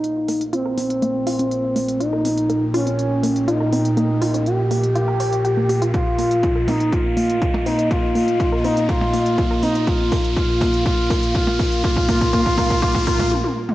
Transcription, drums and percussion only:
0.04 closed hi-hat
0.28 open hi-hat
0.41 closed hi-hat
0.53 closed hi-hat
0.77 open hi-hat
0.90 closed hi-hat
1.02 closed hi-hat
1.27 open hi-hat
1.39 closed hi-hat
1.51 closed hi-hat
1.76 open hi-hat
1.88 closed hi-hat
2.01 closed hi-hat
2.25 open hi-hat
2.38 closed hi-hat
2.50 closed hi-hat
2.74 open hi-hat
2.87 closed hi-hat
2.99 closed hi-hat
3.24 open hi-hat
3.36 closed hi-hat
3.48 closed hi-hat
3.73 open hi-hat
3.85 closed hi-hat
3.97 closed hi-hat
4.22 open hi-hat
4.34 closed hi-hat
4.46 closed hi-hat
4.71 open hi-hat
4.83 closed hi-hat
4.95 closed hi-hat
5.20 open hi-hat
5.33 closed hi-hat
5.45 closed hi-hat
5.69 open hi-hat
5.82 closed hi-hat
5.94 kick, closed hi-hat
6.18 open hi-hat
6.31 closed hi-hat
6.43 kick, closed hi-hat
6.68 open hi-hat, percussion blips
6.80 closed hi-hat
6.92 kick, closed hi-hat
7.17 open hi-hat
7.29 closed hi-hat
7.41 kick, closed hi-hat
7.54 percussion blips
7.66 open hi-hat
7.79 closed hi-hat
7.91 kick, closed hi-hat
8.15 open hi-hat
8.28 closed hi-hat
8.40 kick, closed hi-hat
8.64 open hi-hat
8.77 closed hi-hat
8.89 kick, closed hi-hat
9.01 percussion blips
9.14 open hi-hat
9.26 closed hi-hat
9.38 kick, closed hi-hat
9.63 open hi-hat
9.75 closed hi-hat
9.87 kick, closed hi-hat
10.12 kick, open hi-hat
10.25 closed hi-hat
10.37 kick, closed hi-hat
10.61 kick, open hi-hat, percussion blips
10.74 closed hi-hat
10.86 kick, closed hi-hat
11.10 kick, open hi-hat
11.23 closed hi-hat
11.35 kick, closed hi-hat
11.47 percussion blips
11.59 kick, open hi-hat
11.72 closed hi-hat
11.84 kick, closed hi-hat
11.97 kick
12.09 kick, open hi-hat
12.21 kick, closed hi-hat
12.33 kick, closed hi-hat
12.46 kick
12.58 kick, open hi-hat, percussion blips
12.70 kick, closed hi-hat
12.82 kick, closed hi-hat
12.95 kick, percussion blips
13.07 kick, open hi-hat
13.20 kick, closed hi-hat, percussion blips
13.32 high tom
13.44 high tom
13.69 mid tom

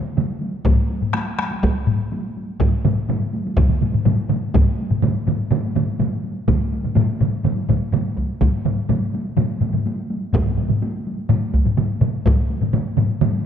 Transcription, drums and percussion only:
0.05 taiko high
0.17 taiko mid, taiko high
0.29 taiko high
0.41 taiko high
0.53 taiko high
0.65 taiko, taiko low-mid, taiko high
0.78 taiko high
0.90 taiko high
1.02 taiko low-mid, taiko high
1.14 taiko rim, taiko high
1.27 taiko high
1.39 taiko rim, taiko high
1.51 taiko high
1.63 taiko, taiko high
1.76 taiko high
1.87 taiko low-mid, taiko high
2.00 taiko high
2.12 taiko high
2.24 taiko high
2.37 taiko high
2.49 taiko high
2.60 taiko, taiko low-mid, taiko mid, taiko high
2.73 taiko high
2.84 taiko low-mid, taiko mid, taiko high
2.97 taiko high
3.09 taiko low-mid, taiko mid, taiko high
3.21 taiko high
3.33 taiko high
3.46 taiko high
3.57 taiko, taiko low-mid, taiko mid, taiko high
3.70 taiko low-mid, taiko mid, taiko high
3.82 taiko low-mid, taiko mid, taiko high
3.93 taiko low-mid, taiko mid
4.05 taiko low-mid, taiko mid, taiko high
4.18 taiko high
4.29 taiko low-mid, taiko mid, taiko high
4.43 taiko high
4.54 taiko, taiko low-mid, taiko mid, taiko high
4.79 taiko high
4.91 taiko low-mid, taiko mid, taiko high
5.02 taiko low-mid, taiko mid, taiko high
5.16 taiko high
5.27 taiko low-mid, taiko mid, taiko high
5.40 taiko high
5.51 taiko low-mid, taiko mid, taiko high
5.64 taiko high
5.75 taiko low-mid, taiko mid, taiko high
5.88 taiko high
5.99 taiko low-mid, taiko mid, taiko high
6.12 taiko high
6.24 taiko high
6.37 taiko high
6.48 taiko, taiko low-mid, taiko mid, taiko high
6.60 taiko high
6.73 taiko high
6.84 taiko low-mid, taiko mid, taiko high
6.96 taiko low-mid, taiko mid, taiko high
7.08 taiko high
7.20 taiko low-mid, taiko mid, taiko high
7.33 taiko high
7.44 taiko low-mid, taiko mid, taiko high
7.57 taiko high
7.68 taiko, taiko low-mid, taiko mid, taiko high
7.81 taiko high
7.93 taiko low-mid, taiko mid, taiko high
8.05 taiko high
8.17 taiko, taiko high
8.30 taiko high
8.41 taiko, taiko low-mid, taiko mid, taiko high
8.54 taiko high
8.65 taiko low-mid, taiko mid, taiko high
8.78 taiko high
8.89 taiko low-mid, taiko mid, taiko high
9.02 taiko high
9.14 taiko high
9.26 taiko high
9.37 taiko low-mid, taiko mid, taiko high
9.50 taiko high
9.61 taiko low-mid, taiko mid, taiko high
9.73 taiko low-mid, taiko mid
9.86 taiko high
9.98 taiko high
10.10 taiko high
10.22 taiko high
10.33 taiko, taiko low-mid, taiko mid, taiko high
10.45 taiko low-mid, taiko mid, taiko high
10.57 taiko low-mid, taiko mid, taiko high
10.69 taiko low-mid, taiko mid, taiko high
10.82 taiko high
10.94 taiko high
11.07 taiko high
11.19 taiko high
11.29 taiko low-mid, taiko mid, taiko high
11.42 taiko high
11.54 taiko, taiko high
11.65 taiko low-mid, taiko mid, taiko high
11.77 taiko low-mid, taiko mid, taiko high
11.90 taiko high
12.01 taiko low-mid, taiko mid, taiko high
12.14 taiko high
12.26 taiko, taiko low-mid, taiko mid, taiko high
12.38 taiko high
12.50 taiko high
12.61 taiko low-mid, taiko mid, taiko high
12.73 taiko low-mid, taiko mid, taiko high
12.86 taiko high
12.97 taiko low-mid, taiko mid, taiko high
13.10 taiko high
13.21 taiko low-mid, taiko mid, taiko high
13.34 taiko high

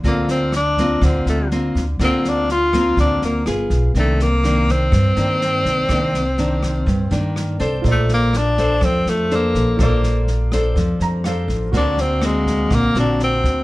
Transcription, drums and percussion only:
0.04 kick, snare
0.28 snare
0.52 cross-stick, snare
0.77 kick, snare
1.01 kick, cross-stick, snare
1.26 snare
1.51 snare
1.75 kick, snare
1.99 kick, cross-stick, snare
2.24 snare
2.49 snare
2.73 kick, cross-stick, snare
2.97 kick, snare
3.22 snare
3.46 cross-stick, snare
3.70 kick, snare
3.94 kick, snare
4.19 snare
4.44 cross-stick, snare
4.68 kick, snare
4.92 kick, cross-stick, snare
5.16 snare
5.41 snare
5.65 kick, snare
5.89 kick, cross-stick, snare
6.14 snare
6.38 snare
6.62 kick, cross-stick, snare
6.87 kick, snare
7.11 snare
7.36 cross-stick, snare
7.60 kick, snare
7.84 kick, snare
8.08 snare
8.33 cross-stick, snare
8.57 kick, snare
8.81 kick, cross-stick, snare
9.06 snare
9.30 snare
9.55 kick, snare
9.79 kick, cross-stick, snare
10.03 snare
10.27 snare
10.52 kick, cross-stick, snare
10.76 kick, snare
11.00 snare
11.24 cross-stick, snare
11.49 kick, snare
11.73 kick, snare
11.98 snare
12.22 cross-stick, snare
12.46 kick, snare
12.71 kick, cross-stick, snare
12.95 snare
13.19 snare
13.44 kick, snare

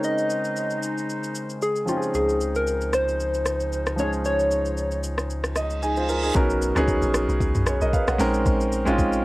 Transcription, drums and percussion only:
0.03 shaker
0.18 shaker
0.30 shaker
0.44 shaker
0.56 shaker
0.70 shaker
0.83 shaker
0.98 shaker
1.09 shaker
1.23 shaker
1.35 shaker
1.50 shaker
1.62 shaker
1.76 shaker
1.88 shaker
2.02 shaker
2.14 shaker
2.29 shaker
2.41 shaker
2.55 shaker
2.67 shaker
2.81 shaker
2.93 cross-stick, shaker
3.08 shaker
3.20 shaker
3.34 shaker
3.46 cross-stick, shaker
3.60 shaker
3.72 shaker
3.86 cross-stick, shaker
3.98 shaker
4.13 shaker
4.25 shaker
4.39 shaker
4.51 shaker
4.65 shaker
4.77 shaker
4.91 shaker
5.03 shaker
5.18 cross-stick, shaker
5.30 shaker
5.44 cross-stick, shaker
5.56 cross-stick, shaker
5.70 shaker
5.83 shaker
5.97 shaker
6.09 shaker
6.23 shaker
6.35 kick, shaker
6.50 shaker
6.62 shaker
6.76 cross-stick, shaker
6.88 kick, shaker
7.02 shaker
7.14 cross-stick, shaker
7.29 shaker
7.40 kick, shaker
7.55 mid tom, shaker
7.66 cross-stick, shaker
7.81 shaker
7.93 kick, shaker
8.08 cross-stick, shaker
8.20 open hi-hat, shaker
8.34 shaker
8.46 kick, shaker
8.61 shaker
8.72 shaker
8.87 shaker
8.98 kick, shaker
9.13 shaker

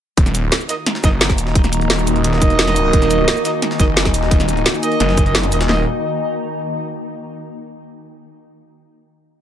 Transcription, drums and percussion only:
0.17 kick, closed hi-hat
0.26 snare, closed hi-hat, shaker
0.35 closed hi-hat, shaker
0.52 snare, closed hi-hat
0.61 shaker
0.69 snare, closed hi-hat, shaker
0.86 snare, closed hi-hat
0.95 snare
1.04 kick, snare, closed hi-hat, shaker
1.21 snare, closed hi-hat
1.30 kick, snare, closed hi-hat, shaker
1.38 closed hi-hat, open hi-hat, shaker
1.47 snare
1.55 kick, closed hi-hat
1.64 snare, closed hi-hat, shaker
1.73 closed hi-hat, shaker
1.81 closed hi-hat
1.90 snare, closed hi-hat
1.99 shaker
2.07 closed hi-hat, shaker
2.16 closed hi-hat
2.24 closed hi-hat
2.33 snare
2.42 kick, closed hi-hat, shaker
2.50 closed hi-hat
2.59 snare, closed hi-hat
2.67 snare, closed hi-hat, shaker
2.76 closed hi-hat, open hi-hat, shaker
2.93 kick, closed hi-hat
3.02 snare, closed hi-hat, shaker
3.11 closed hi-hat, shaker
3.28 snare, closed hi-hat
3.36 shaker
3.45 snare, closed hi-hat, shaker
3.62 snare, closed hi-hat
3.71 snare
3.80 kick, snare, closed hi-hat, shaker
3.97 snare, closed hi-hat
4.05 kick, snare, closed hi-hat, shaker
4.14 closed hi-hat, open hi-hat, shaker
4.23 snare
4.31 kick, closed hi-hat
4.40 snare, closed hi-hat, shaker
4.49 closed hi-hat, shaker
4.57 closed hi-hat
4.66 snare, closed hi-hat
4.74 shaker
4.83 closed hi-hat, shaker
4.92 closed hi-hat
5.00 snare, closed hi-hat
5.09 snare
5.17 kick, closed hi-hat, shaker
5.26 closed hi-hat
5.35 snare, closed hi-hat
5.43 snare, closed hi-hat, shaker
5.52 closed hi-hat, open hi-hat, shaker
5.61 snare, closed hi-hat
5.69 snare

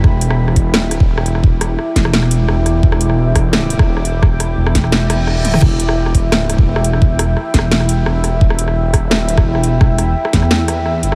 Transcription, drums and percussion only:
0.04 kick, cross-stick
0.21 closed hi-hat
0.30 cross-stick
0.48 cross-stick
0.56 kick, closed hi-hat
0.74 cross-stick, snare, closed hi-hat
0.91 cross-stick, closed hi-hat
1.00 kick
1.18 cross-stick
1.26 closed hi-hat
1.35 cross-stick
1.44 kick
1.61 cross-stick, closed hi-hat
1.79 cross-stick
1.96 kick, snare, closed hi-hat
2.05 cross-stick
2.13 snare, closed hi-hat
2.23 cross-stick
2.31 closed hi-hat
2.48 cross-stick
2.66 cross-stick, closed hi-hat
2.83 kick
2.92 cross-stick
3.01 closed hi-hat
3.10 cross-stick
3.35 kick, cross-stick, closed hi-hat
3.53 cross-stick, snare, closed hi-hat
3.70 closed hi-hat
3.79 kick, cross-stick
3.97 cross-stick
4.05 closed hi-hat
4.23 kick, cross-stick
4.40 cross-stick, closed hi-hat
4.67 cross-stick
4.75 kick, snare, closed hi-hat
4.84 cross-stick
4.92 snare, closed hi-hat
5.10 cross-stick, closed hi-hat
5.27 cross-stick
5.45 closed hi-hat, high tom
5.54 cross-stick, mid tom
5.62 kick, cross-stick, crash
5.80 closed hi-hat
5.89 cross-stick
6.06 cross-stick
6.15 kick, closed hi-hat
6.32 cross-stick, snare, closed hi-hat
6.50 cross-stick, closed hi-hat
6.58 kick
6.76 cross-stick
6.84 closed hi-hat
6.93 cross-stick
7.02 kick
7.19 cross-stick, closed hi-hat
7.37 cross-stick
7.54 kick, snare, closed hi-hat
7.59 cross-stick
7.72 snare, closed hi-hat
7.80 cross-stick
7.89 closed hi-hat
8.06 cross-stick
8.24 cross-stick, closed hi-hat
8.41 kick
8.50 cross-stick
8.59 closed hi-hat
8.68 cross-stick
8.94 kick, cross-stick, closed hi-hat
9.11 cross-stick, snare, closed hi-hat
9.29 closed hi-hat
9.38 kick, cross-stick
9.55 cross-stick
9.63 closed hi-hat
9.81 kick, cross-stick
9.98 cross-stick, closed hi-hat
10.25 cross-stick
10.33 kick, snare, closed hi-hat
10.42 cross-stick
10.51 snare, closed hi-hat
10.68 cross-stick, closed hi-hat
10.86 cross-stick
11.03 closed hi-hat

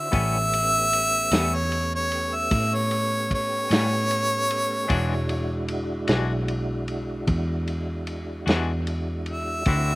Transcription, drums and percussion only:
0.13 kick, ride
0.53 ride
0.93 ride
1.31 snare, ride
1.72 ride
2.12 ride
2.51 kick, ride
2.91 ride
3.31 kick, ride
3.71 snare, ride
4.11 ride
4.51 ride
4.90 kick, ride
5.29 ride
5.68 ride
6.08 snare, ride
6.48 ride
6.88 ride
7.27 kick, ride
7.68 ride
8.07 ride
8.47 snare, ride
8.87 ride
9.26 ride
9.66 kick, ride

